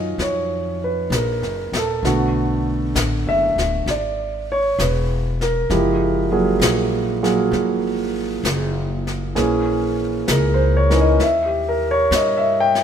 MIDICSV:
0, 0, Header, 1, 4, 480
1, 0, Start_track
1, 0, Tempo, 917431
1, 1064, Time_signature, 4, 2, 24, 8
1, 6715, End_track
2, 0, Start_track
2, 0, Title_t, "Grand piano"
2, 0, Program_c, 0, 0
2, 0, Control_c, 0, 64, 127
2, 0, Note_on_c, 0, 51, 44
2, 0, Note_on_c, 0, 54, 37
2, 0, Note_on_c, 0, 61, 40
2, 0, Note_on_c, 0, 65, 48
2, 0, Note_on_c, 0, 75, 66
2, 86, Note_off_c, 0, 75, 0
2, 116, Note_on_c, 0, 73, 61
2, 409, Note_off_c, 0, 73, 0
2, 440, Note_on_c, 0, 71, 57
2, 587, Note_off_c, 0, 71, 0
2, 602, Note_on_c, 0, 70, 53
2, 892, Note_off_c, 0, 70, 0
2, 925, Note_on_c, 0, 69, 60
2, 1070, Note_off_c, 0, 51, 0
2, 1070, Control_c, 0, 64, 0
2, 1071, Note_off_c, 0, 54, 0
2, 1071, Note_off_c, 0, 65, 0
2, 1071, Note_on_c, 0, 50, 53
2, 1072, Note_off_c, 0, 61, 0
2, 1072, Note_on_c, 0, 57, 47
2, 1073, Note_on_c, 0, 66, 57
2, 1074, Note_on_c, 0, 59, 45
2, 1169, Control_c, 0, 64, 127
2, 1643, Note_off_c, 0, 69, 0
2, 1719, Note_on_c, 0, 76, 81
2, 2011, Note_off_c, 0, 76, 0
2, 2028, Note_off_c, 0, 50, 0
2, 2029, Note_off_c, 0, 57, 0
2, 2029, Note_off_c, 0, 66, 0
2, 2030, Note_off_c, 0, 59, 0
2, 2031, Control_c, 0, 64, 0
2, 2042, Note_on_c, 0, 74, 66
2, 2333, Note_off_c, 0, 74, 0
2, 2364, Note_on_c, 0, 73, 77
2, 2509, Note_off_c, 0, 73, 0
2, 2521, Note_on_c, 0, 71, 57
2, 2810, Note_off_c, 0, 71, 0
2, 2836, Note_on_c, 0, 70, 67
2, 2982, Note_on_c, 0, 56, 50
2, 2984, Note_on_c, 0, 53, 53
2, 2986, Note_on_c, 0, 67, 65
2, 2987, Note_on_c, 0, 64, 54
2, 3084, Control_c, 0, 64, 127
2, 3275, Note_off_c, 0, 56, 0
2, 3276, Note_off_c, 0, 53, 0
2, 3277, Note_off_c, 0, 64, 0
2, 3277, Note_off_c, 0, 67, 0
2, 3305, Note_on_c, 0, 68, 65
2, 3306, Note_on_c, 0, 54, 58
2, 3306, Note_on_c, 0, 58, 49
2, 3307, Note_on_c, 0, 65, 47
2, 3554, Note_off_c, 0, 70, 0
2, 3719, Note_off_c, 0, 68, 0
2, 3720, Note_off_c, 0, 54, 0
2, 3720, Note_off_c, 0, 58, 0
2, 3720, Note_off_c, 0, 65, 0
2, 3781, Note_on_c, 0, 54, 57
2, 3781, Note_on_c, 0, 58, 53
2, 3782, Note_on_c, 0, 65, 53
2, 3783, Note_on_c, 0, 68, 62
2, 4383, Note_off_c, 0, 54, 0
2, 4383, Note_off_c, 0, 58, 0
2, 4384, Note_off_c, 0, 65, 0
2, 4384, Note_off_c, 0, 68, 0
2, 4894, Note_on_c, 0, 52, 57
2, 4894, Note_on_c, 0, 61, 53
2, 4898, Note_on_c, 0, 58, 54
2, 4900, Note_on_c, 0, 68, 67
2, 4902, Control_c, 0, 64, 0
2, 5005, Control_c, 0, 64, 127
2, 5189, Note_off_c, 0, 52, 0
2, 5189, Note_off_c, 0, 61, 0
2, 5191, Note_off_c, 0, 58, 0
2, 5192, Note_off_c, 0, 68, 0
2, 5395, Note_on_c, 0, 70, 68
2, 5515, Note_on_c, 0, 72, 66
2, 5545, Note_off_c, 0, 70, 0
2, 5633, Note_on_c, 0, 73, 76
2, 5686, Note_off_c, 0, 72, 0
2, 5702, Note_on_c, 0, 61, 50
2, 5705, Note_on_c, 0, 52, 57
2, 5705, Note_on_c, 0, 63, 49
2, 5705, Note_on_c, 0, 70, 64
2, 5742, Note_off_c, 0, 73, 0
2, 5762, Note_on_c, 0, 75, 68
2, 5841, Note_off_c, 0, 61, 0
2, 5842, Note_off_c, 0, 52, 0
2, 5842, Note_off_c, 0, 63, 0
2, 5842, Note_off_c, 0, 70, 0
2, 5845, Note_off_c, 0, 75, 0
2, 5865, Control_c, 0, 64, 0
2, 5872, Note_on_c, 0, 76, 71
2, 5952, Control_c, 0, 64, 127
2, 5995, Note_on_c, 0, 67, 45
2, 6024, Note_off_c, 0, 76, 0
2, 6114, Note_on_c, 0, 70, 68
2, 6167, Note_off_c, 0, 67, 0
2, 6223, Note_off_c, 0, 70, 0
2, 6232, Note_on_c, 0, 73, 79
2, 6322, Note_off_c, 0, 73, 0
2, 6357, Note_on_c, 0, 75, 69
2, 6475, Note_on_c, 0, 76, 68
2, 6509, Note_off_c, 0, 75, 0
2, 6595, Note_on_c, 0, 79, 80
2, 6650, Note_off_c, 0, 76, 0
2, 6706, Note_off_c, 0, 79, 0
2, 6715, End_track
3, 0, Start_track
3, 0, Title_t, "Upright bass"
3, 0, Program_c, 1, 32
3, 0, Note_on_c, 1, 42, 78
3, 85, Note_off_c, 1, 42, 0
3, 95, Note_on_c, 1, 41, 73
3, 566, Note_off_c, 1, 41, 0
3, 576, Note_on_c, 1, 34, 80
3, 741, Note_off_c, 1, 34, 0
3, 741, Note_on_c, 1, 30, 44
3, 899, Note_off_c, 1, 30, 0
3, 902, Note_on_c, 1, 27, 56
3, 1052, Note_off_c, 1, 27, 0
3, 1061, Note_on_c, 1, 35, 72
3, 1529, Note_off_c, 1, 35, 0
3, 1544, Note_on_c, 1, 33, 78
3, 1706, Note_off_c, 1, 33, 0
3, 1706, Note_on_c, 1, 30, 45
3, 1859, Note_off_c, 1, 30, 0
3, 1862, Note_on_c, 1, 26, 61
3, 2012, Note_off_c, 1, 26, 0
3, 2021, Note_on_c, 1, 32, 74
3, 2488, Note_off_c, 1, 32, 0
3, 2504, Note_on_c, 1, 28, 86
3, 2967, Note_off_c, 1, 28, 0
3, 2980, Note_on_c, 1, 30, 76
3, 3445, Note_off_c, 1, 30, 0
3, 3451, Note_on_c, 1, 34, 77
3, 3919, Note_off_c, 1, 34, 0
3, 3932, Note_on_c, 1, 32, 83
3, 4398, Note_off_c, 1, 32, 0
3, 4414, Note_on_c, 1, 30, 82
3, 4879, Note_off_c, 1, 30, 0
3, 4898, Note_on_c, 1, 34, 77
3, 5363, Note_off_c, 1, 34, 0
3, 5381, Note_on_c, 1, 37, 81
3, 5845, Note_off_c, 1, 37, 0
3, 5857, Note_on_c, 1, 39, 76
3, 6325, Note_off_c, 1, 39, 0
3, 6335, Note_on_c, 1, 43, 83
3, 6715, Note_off_c, 1, 43, 0
3, 6715, End_track
4, 0, Start_track
4, 0, Title_t, "Drums"
4, 100, Note_on_c, 9, 25, 37
4, 100, Note_on_c, 9, 38, 33
4, 153, Note_off_c, 9, 38, 0
4, 586, Note_on_c, 9, 38, 55
4, 586, Note_on_c, 9, 44, 53
4, 639, Note_off_c, 9, 38, 0
4, 639, Note_off_c, 9, 44, 0
4, 748, Note_on_c, 9, 38, 23
4, 801, Note_off_c, 9, 38, 0
4, 907, Note_on_c, 9, 38, 40
4, 915, Note_off_c, 9, 38, 0
4, 915, Note_on_c, 9, 38, 34
4, 968, Note_off_c, 9, 38, 0
4, 1071, Note_off_c, 9, 25, 0
4, 1071, Note_on_c, 9, 25, 42
4, 1071, Note_on_c, 9, 38, 38
4, 1124, Note_off_c, 9, 38, 0
4, 1546, Note_on_c, 9, 38, 57
4, 1546, Note_on_c, 9, 44, 52
4, 1599, Note_off_c, 9, 38, 0
4, 1599, Note_off_c, 9, 44, 0
4, 1874, Note_on_c, 9, 38, 34
4, 1926, Note_off_c, 9, 38, 0
4, 2027, Note_off_c, 9, 25, 0
4, 2027, Note_on_c, 9, 25, 40
4, 2027, Note_on_c, 9, 38, 38
4, 2079, Note_off_c, 9, 38, 0
4, 2508, Note_on_c, 9, 38, 50
4, 2508, Note_on_c, 9, 44, 51
4, 2561, Note_off_c, 9, 38, 0
4, 2561, Note_off_c, 9, 44, 0
4, 2831, Note_on_c, 9, 38, 33
4, 2883, Note_off_c, 9, 38, 0
4, 2983, Note_off_c, 9, 25, 0
4, 2983, Note_on_c, 9, 25, 48
4, 2983, Note_on_c, 9, 38, 39
4, 3035, Note_off_c, 9, 38, 0
4, 3461, Note_on_c, 9, 38, 56
4, 3461, Note_on_c, 9, 44, 61
4, 3513, Note_off_c, 9, 38, 0
4, 3513, Note_off_c, 9, 44, 0
4, 3788, Note_on_c, 9, 38, 36
4, 3840, Note_off_c, 9, 38, 0
4, 3940, Note_off_c, 9, 25, 0
4, 3940, Note_on_c, 9, 25, 43
4, 3940, Note_on_c, 9, 38, 35
4, 3992, Note_off_c, 9, 38, 0
4, 4419, Note_on_c, 9, 38, 55
4, 4419, Note_on_c, 9, 44, 44
4, 4471, Note_off_c, 9, 38, 0
4, 4471, Note_off_c, 9, 44, 0
4, 4746, Note_on_c, 9, 38, 31
4, 4798, Note_off_c, 9, 38, 0
4, 4897, Note_off_c, 9, 25, 0
4, 4897, Note_on_c, 9, 25, 43
4, 4897, Note_on_c, 9, 38, 40
4, 4950, Note_off_c, 9, 38, 0
4, 5378, Note_on_c, 9, 38, 55
4, 5378, Note_on_c, 9, 44, 59
4, 5430, Note_off_c, 9, 38, 0
4, 5430, Note_off_c, 9, 44, 0
4, 5707, Note_on_c, 9, 38, 36
4, 5759, Note_off_c, 9, 38, 0
4, 5859, Note_off_c, 9, 25, 0
4, 5859, Note_on_c, 9, 25, 39
4, 5859, Note_on_c, 9, 38, 34
4, 5911, Note_off_c, 9, 38, 0
4, 6340, Note_on_c, 9, 38, 53
4, 6340, Note_on_c, 9, 44, 49
4, 6393, Note_off_c, 9, 38, 0
4, 6393, Note_off_c, 9, 44, 0
4, 6671, Note_on_c, 9, 38, 31
4, 6715, Note_off_c, 9, 25, 0
4, 6715, Note_off_c, 9, 38, 0
4, 6715, End_track
0, 0, End_of_file